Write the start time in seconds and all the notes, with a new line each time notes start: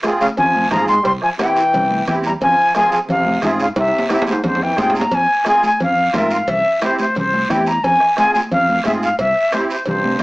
0.03 C4 F4 G#4, bombo rim, cowbell, high conga, short guiro
0.20 C#3 F5, high conga, short guiro
0.37 F2 F3 G#5, cowbell, high conga, low conga, long guiro
0.55 high conga
0.71 G#2 F3 C4 F4 G#4 A#5, bombo low, bombo rim, cowbell, high conga, low conga, low timbale, short guiro
0.88 G#3 C6, short guiro
1.03 C2 G3 C6, bombo low, cowbell, long guiro
1.22 F3 G#5, bombo rim
1.38 E3 C4 E4 G4 G5, bombo rim, cowbell, high conga, short guiro
1.56 short guiro
1.73 C2, cowbell, high conga, low conga, long guiro
1.91 high conga
2.07 E2 E3 C4 E4 G4 G5, bombo low, bombo rim, cowbell, high conga, low conga, short guiro
2.23 G3 A#5, short guiro
2.41 F2 F3 G#5, bombo low, cowbell, high conga, low conga, long guiro
2.74 F3 C4 F4 G#4 G#5, bombo rim, cowbell, high conga, short guiro
2.91 F3 G#5, short guiro
3.07 F2 C3 F5, cowbell, high conga, low conga, long guiro
3.25 high conga
3.42 G#2 C3 C4 F4 G#4 E5, bombo low, bombo rim, cowbell, high conga, low conga, short guiro
3.59 C#3 F5, short guiro
3.76 C2 C3 E5, bombo low, cowbell, high conga, high timbale, long guiro
3.88 high timbale
3.98 low timbale
4.09 C3 C4 E4 G4 E5, bombo rim, cowbell, high conga, high timbale, short guiro
4.22 low timbale
4.27 G#2 C5, high conga, short guiro
4.32 high timbale
4.44 F2 G#2 C5, cowbell, high conga, low conga, low timbale, long guiro
4.55 low timbale
4.62 E3 G5
4.77 G#2 C3 C4 F4 G#4 G5, bombo low, bombo rim, cowbell, high conga, low timbale, short guiro
4.90 low timbale
4.95 A#5, short guiro
5.01 low timbale
5.11 F2 G#5, bombo low, cowbell, high conga, long guiro
5.45 C4 F4 G#4 G#5, bombo rim, cowbell, high conga, short guiro
5.63 G#5, high conga, short guiro
5.80 F2 F5, cowbell, high conga, low conga, long guiro
6.13 G#2 C4 F4 A#4 E5, bombo low, bombo rim, cowbell, high conga, low conga, low timbale, short guiro
6.30 F5, short guiro
6.47 C2 E5, bombo low, cowbell, high conga, low conga, long guiro
6.81 C4 E4 G4 C5, bombo rim, cowbell, high conga, short guiro
6.99 C5, high conga, short guiro
7.15 C2 C5, cowbell, high conga, low conga, long guiro
7.33 high conga
7.49 E2 C4 E4 G4 G5, bombo low, bombo rim, cowbell, high conga, low conga, short guiro
7.66 A#5, short guiro
7.83 F2 G#5, bombo low, cowbell, high conga, low conga, long guiro
8.00 bombo rim
8.17 C4 F4 G#4 G#5, bombo rim, cowbell, high conga, short guiro
8.33 G#5, high conga, short guiro
8.51 F2 F5, cowbell, high conga, low conga, long guiro
8.69 high conga
8.84 G#2 C4 F4 G#4 E5, bombo low, bombo rim, cowbell, high conga, low timbale, short guiro
9.03 F5, short guiro
9.18 C2 E5, bombo low, cowbell, high conga, long guiro
9.52 C4 E4 G4 C5, bombo rim, cowbell, high conga, short guiro
9.69 C5, short guiro
9.85 C2 G2 C5, cowbell, high conga, low conga, long guiro
10.04 C3, high conga
10.19 C4 E4, cowbell, low timbale